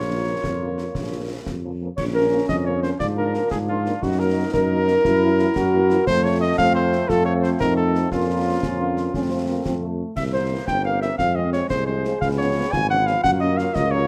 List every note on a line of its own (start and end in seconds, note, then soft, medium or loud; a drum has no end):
0.00 0.35 A#1 medium
0.00 1.68 A#3 medium
0.00 1.42 F4 medium
0.00 1.42 C#5 medium
0.10 0.16 C#3 soft
0.10 0.16 F3 soft
0.10 0.16 A#3 soft
0.27 0.33 C#3 soft
0.27 0.33 F3 soft
0.27 0.33 A#3 soft
0.44 0.87 F2 medium
0.44 concert bass drum medium
0.44 snare medium
0.61 0.67 C#3 soft
0.61 0.67 F3 soft
0.61 0.67 A#3 soft
0.78 0.85 C#3 soft
0.78 0.85 F3 soft
0.78 0.85 A#3 soft
0.78 snare soft
0.95 1.38 A#1 medium
0.95 concert bass drum medium
0.95 snare medium
1.12 1.19 C#3 soft
1.12 1.18 F3 soft
1.12 1.19 A#3 soft
1.29 1.36 C#3 soft
1.29 1.36 F3 soft
1.29 1.36 A#3 soft
1.46 1.89 F2 medium
1.46 concert bass drum medium
1.46 snare medium
1.63 1.70 C#3 soft
1.63 1.70 F3 soft
1.63 1.69 A#3 soft
1.81 1.87 C#3 soft
1.81 1.87 F3 soft
1.81 1.87 A#3 soft
1.97 2.40 A#1 medium
1.97 3.98 F3 medium
1.97 2.96 C#4 medium
1.97 2.05 C#5 medium
1.97 concert bass drum medium
1.97 snare medium
1.97 crash soft
2.14 2.21 F3 soft
2.14 2.21 A#3 medium
2.14 2.21 C#4 medium
2.14 2.46 A#4 medium
2.32 2.38 F3 medium
2.32 2.38 A#3 medium
2.32 2.38 C#4 medium
2.48 2.91 F2 medium
2.48 2.64 D#5 medium
2.48 2.56 D#5 loud
2.48 concert bass drum medium
2.48 snare medium
2.66 2.72 F3 medium
2.66 2.72 A#3 soft
2.66 2.72 C#4 medium
2.66 2.82 C#5 medium
2.66 2.83 C#5 medium
2.82 2.89 F3 medium
2.82 2.89 A#3 medium
2.82 2.89 C#4 medium
2.82 2.90 C5 medium
2.82 2.99 C5 medium
2.82 snare medium
2.99 3.38 G#2 medium
2.99 4.02 D4 medium
2.99 4.04 F4 medium
2.99 3.07 D5 medium
2.99 concert bass drum medium
2.99 snare medium
3.17 3.24 F3 soft
3.17 3.23 A#3 medium
3.17 3.23 D4 soft
3.17 3.49 A#4 medium
3.34 3.40 F3 medium
3.34 3.40 A#3 medium
3.34 3.40 D4 medium
3.34 snare medium
3.51 3.94 G#2 medium
3.51 3.59 G#4 medium
3.51 concert bass drum medium
3.51 snare medium
3.68 3.74 F3 medium
3.68 3.74 A#3 medium
3.68 3.75 D4 soft
3.68 4.00 F4 medium
3.68 4.04 F4 medium
3.86 3.92 F3 medium
3.86 3.92 A#3 medium
3.86 3.92 D4 medium
3.86 snare soft
4.02 4.45 F#2 medium
4.02 6.03 F#3 medium
4.02 5.04 D#4 medium
4.02 5.05 D#4 medium
4.02 4.18 F#4 medium
4.02 4.21 F#4 medium
4.02 concert bass drum medium
4.02 snare medium
4.19 4.26 F#3 medium
4.19 4.26 A#3 medium
4.19 4.26 D#4 medium
4.19 4.51 A#4 medium
4.19 4.53 A#4 medium
4.37 4.43 F#3 medium
4.37 4.43 A#3 medium
4.37 4.43 D#4 medium
4.53 4.96 F#2 medium
4.53 6.03 A#4 loud
4.53 6.03 A#4 medium
4.53 concert bass drum medium
4.53 snare medium
4.71 4.77 F#3 medium
4.71 4.77 A#3 medium
4.71 4.77 D#4 medium
4.88 4.94 F#3 medium
4.88 4.94 A#3 medium
4.88 4.94 D#4 medium
4.88 snare medium
5.05 5.47 F#2 medium
5.05 6.03 E4 medium
5.05 5.53 E4 medium
5.05 concert bass drum medium
5.05 snare medium
5.22 5.28 E3 medium
5.22 5.28 A#3 medium
5.22 5.28 E4 medium
5.39 5.45 E3 medium
5.39 5.45 A#3 medium
5.39 5.45 E4 medium
5.39 snare medium
5.56 5.99 F#2 medium
5.56 6.09 F#4 medium
5.56 concert bass drum medium
5.56 snare medium
5.73 5.79 E3 medium
5.73 5.79 A#3 medium
5.73 5.79 E4 medium
5.90 5.96 E3 medium
5.90 5.97 A#3 medium
5.90 5.97 E4 medium
5.90 snare medium
6.07 6.53 F2 medium
6.07 6.55 F3 medium
6.07 8.08 F3 medium
6.07 6.55 A3 medium
6.07 8.12 A3 medium
6.07 7.08 A3 medium
6.07 6.55 C4 medium
6.07 6.23 C5 medium
6.07 6.26 C5 loud
6.07 concert bass drum medium
6.07 snare medium
6.07 crash soft
6.24 6.32 C#5 medium
6.24 6.41 C#5 loud
6.41 6.57 D#5 medium
6.41 6.57 D#5 loud
6.58 7.04 F2 medium
6.58 7.06 F3 medium
6.58 7.06 A3 medium
6.58 7.06 C4 medium
6.58 6.74 F5 loud
6.58 6.75 F5 loud
6.58 concert bass drum medium
6.58 snare medium
6.75 7.10 C5 loud
6.75 7.09 C5 medium
6.92 snare medium
7.09 7.55 F2 medium
7.09 8.08 F3 medium
7.09 8.08 A3 medium
7.09 8.08 C4 medium
7.09 7.46 F4 medium
7.09 7.25 A4 loud
7.09 7.25 A4 medium
7.09 concert bass drum medium
7.09 snare medium
7.26 7.33 C#5 medium
7.26 7.43 C#5 medium
7.43 7.50 C5 medium
7.43 7.59 C5 medium
7.43 snare medium
7.60 8.06 F2 medium
7.60 8.08 D#4 medium
7.60 7.76 A#4 loud
7.60 7.78 A#4 medium
7.60 concert bass drum medium
7.60 snare medium
7.77 8.09 A4 medium
7.95 snare medium
8.11 8.57 F2 medium
8.11 9.10 F3 medium
8.11 9.95 F3 medium
8.11 9.14 A#3 medium
8.11 9.11 A#3 medium
8.11 9.14 C#4 medium
8.11 8.56 C#4 medium
8.11 9.96 F4 medium
8.11 concert bass drum medium
8.11 snare medium
8.63 9.08 F2 medium
8.63 8.79 C#4 medium
8.63 concert bass drum medium
8.63 snare medium
8.80 9.12 A#3 medium
8.97 snare soft
9.14 9.59 F2 medium
9.14 9.95 F3 soft
9.14 9.95 A3 medium
9.14 10.00 A3 medium
9.14 9.95 C4 medium
9.14 9.22 C#4 medium
9.14 concert bass drum medium
9.14 snare medium
9.31 9.39 C4 medium
9.48 9.64 A#3 medium
9.65 10.03 F2 medium
9.65 9.74 C4 medium
9.65 concert bass drum medium
9.65 snare medium
9.83 10.14 A3 medium
10.16 10.59 C2 medium
10.16 11.15 E3 medium
10.16 11.15 A#3 medium
10.16 10.24 E5 medium
10.16 10.32 E5 medium
10.16 concert bass drum medium
10.16 snare medium
10.16 crash soft
10.33 10.40 E3 medium
10.33 10.40 A#3 medium
10.33 10.40 C4 soft
10.33 10.65 C5 medium
10.51 10.57 E3 soft
10.51 10.57 A#3 medium
10.51 10.57 C4 medium
10.67 11.10 G1 medium
10.67 11.16 C4 medium
10.67 10.85 G5 medium
10.67 10.84 G5 medium
10.67 concert bass drum medium
10.67 snare medium
10.85 10.92 E3 medium
10.85 10.91 A#3 soft
10.85 10.92 C4 soft
10.85 11.01 F5 medium
10.85 11.02 F5 medium
11.01 11.08 E3 medium
11.01 11.08 A#3 medium
11.01 11.08 C4 medium
11.01 11.09 E5 medium
11.01 11.17 E5 medium
11.01 snare soft
11.18 11.61 F2 medium
11.18 13.24 F3 medium
11.18 12.22 G#3 medium
11.18 11.67 C4 medium
11.18 11.37 F5 loud
11.18 11.35 F5 medium
11.18 concert bass drum medium
11.18 snare medium
11.35 11.43 F3 soft
11.35 11.43 G#3 soft
11.35 11.43 C4 medium
11.35 11.52 D#5 medium
11.35 11.44 D#5 medium
11.53 11.59 F3 medium
11.53 11.59 G#3 medium
11.53 11.59 C4 medium
11.53 11.61 C#5 medium
11.53 11.69 C#5 medium
11.53 snare medium
11.70 12.13 C2 medium
11.70 12.69 G#4 medium
11.70 11.86 C5 medium
11.70 11.78 C5 medium
11.70 concert bass drum medium
11.70 snare medium
11.87 11.94 F3 medium
11.87 11.94 G#3 medium
11.87 11.94 C4 medium
11.87 12.19 C5 medium
12.05 12.11 F3 medium
12.05 12.11 G#3 medium
12.05 12.11 C4 medium
12.05 snare medium
12.21 12.64 C#2 medium
12.21 13.20 B3 medium
12.21 12.29 F5 medium
12.21 concert bass drum medium
12.21 snare medium
12.38 12.45 F3 medium
12.38 12.45 B3 medium
12.38 12.45 C#4 medium
12.38 12.73 C#5 medium
12.38 12.71 C#5 medium
12.56 12.62 F3 medium
12.56 12.62 B3 medium
12.56 12.63 C#4 medium
12.72 13.15 G#1 medium
12.72 14.07 F4 medium
12.72 12.89 G#5 loud
12.72 12.81 G#5 medium
12.72 concert bass drum medium
12.72 snare medium
12.90 12.96 F3 medium
12.90 12.97 B3 medium
12.90 12.97 C#4 medium
12.90 13.08 F#5 loud
12.90 12.98 F#5 medium
13.07 13.13 F3 medium
13.07 13.13 B3 medium
13.07 13.13 C#4 medium
13.07 13.23 F5 loud
13.07 13.15 F5 medium
13.07 snare soft
13.23 13.67 F#2 medium
13.23 14.07 F#3 medium
13.23 14.07 A#3 medium
13.23 13.31 F#5 loud
13.23 13.40 F#5 loud
13.23 concert bass drum medium
13.23 snare medium
13.40 13.48 F#3 medium
13.40 13.47 A#3 medium
13.40 13.47 C#4 medium
13.40 13.59 D#5 medium
13.40 13.57 D#5 medium
13.57 13.65 F#3 medium
13.57 13.65 A#3 medium
13.57 13.65 C#4 medium
13.57 13.76 F5 medium
13.57 13.66 F5 medium
13.57 snare medium
13.75 14.07 C#2 medium
13.75 13.93 D#5 loud
13.75 13.91 D#5 loud
13.75 concert bass drum medium
13.75 snare medium
13.91 13.99 F#3 medium
13.91 13.99 A#3 medium
13.91 13.99 C#4 medium
13.91 14.07 C#5 loud
13.91 14.07 C#5 medium